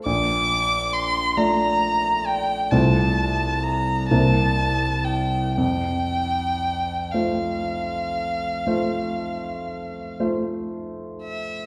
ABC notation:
X:1
M:12/8
L:1/8
Q:3/8=40
K:F
V:1 name="Violin"
d'2 c' b2 g a2 b a2 g | g3 f6 z2 e |]
V:2 name="Grand piano"
B,,,3 [A,Fd]3 [C,,A,Fc]3 [C,,B,Ec]3 | F,,3 [A,Fc]3 [A,Fc]3 [A,Fc]3 |]